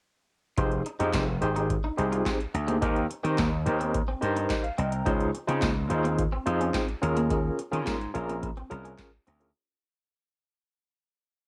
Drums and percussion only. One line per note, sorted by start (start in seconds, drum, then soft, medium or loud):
0.58 kick loud
0.58 closed hi-hat medium
0.72 closed hi-hat soft
0.86 closed hi-hat medium
1.00 closed hi-hat medium
1.13 kick medium
1.13 snare loud
1.13 clap medium
1.13 closed hi-hat loud
1.42 closed hi-hat medium
1.56 closed hi-hat soft
1.70 kick loud
1.70 closed hi-hat loud
1.98 closed hi-hat medium
2.13 closed hi-hat medium
2.26 kick medium
2.26 snare medium
2.26 clap medium
2.26 closed hi-hat medium
2.40 closed hi-hat soft
2.55 closed hi-hat medium
2.68 closed hi-hat soft
2.82 kick loud
2.82 closed hi-hat medium
2.96 closed hi-hat soft
3.11 closed hi-hat medium
3.25 closed hi-hat medium
3.38 kick medium
3.38 snare loud
3.38 clap medium
3.38 closed hi-hat medium
3.66 closed hi-hat medium
3.81 closed hi-hat medium
3.94 kick loud
3.94 closed hi-hat medium
4.22 closed hi-hat medium
4.37 closed hi-hat medium
4.50 kick medium
4.50 snare medium
4.50 clap medium
4.50 closed hi-hat medium
4.64 closed hi-hat soft
4.78 closed hi-hat medium
4.92 closed hi-hat medium
5.06 kick loud
5.06 closed hi-hat medium
5.20 closed hi-hat soft
5.35 closed hi-hat medium
5.49 closed hi-hat medium
5.62 kick loud
5.62 snare loud
5.62 clap medium
5.62 closed hi-hat loud
5.90 closed hi-hat medium
6.05 closed hi-hat soft
6.19 kick loud
6.19 closed hi-hat loud
6.47 closed hi-hat medium
6.61 closed hi-hat medium
6.74 kick loud
6.74 snare loud
6.74 clap medium
6.74 closed hi-hat medium
6.88 closed hi-hat soft
7.03 closed hi-hat medium
7.17 closed hi-hat medium
7.30 kick loud
7.30 closed hi-hat medium
7.59 closed hi-hat medium
7.73 closed hi-hat medium
7.87 kick medium
7.87 snare loud
7.87 clap medium
7.87 closed hi-hat loud
8.01 closed hi-hat soft
8.15 closed hi-hat medium
8.29 closed hi-hat soft
8.43 kick loud
8.43 closed hi-hat medium
8.57 closed hi-hat soft
8.71 closed hi-hat medium
8.85 closed hi-hat medium
8.98 kick loud
8.98 snare loud
8.98 clap medium
8.98 closed hi-hat medium
9.27 closed hi-hat medium
9.41 closed hi-hat soft